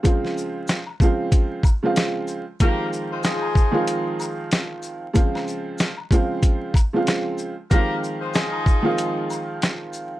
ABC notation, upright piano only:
X:1
M:4/4
L:1/16
Q:"Swing 16ths" 1/4=94
K:Ab
V:1 name="Upright piano" clef=bass
[D,F,A,CF]4- [D,F,A,CF] z [D,F,A,CF]4 z [D,F,A,CF]4 z | [E,F,A,CF]6 z [E,F,A,CF]8 z | [D,F,A,CF]4- [D,F,A,CF] z [D,F,A,CF]4 z [D,F,A,CF]4 z | [E,F,A,CF]6 z [E,F,A,CF]8 z |]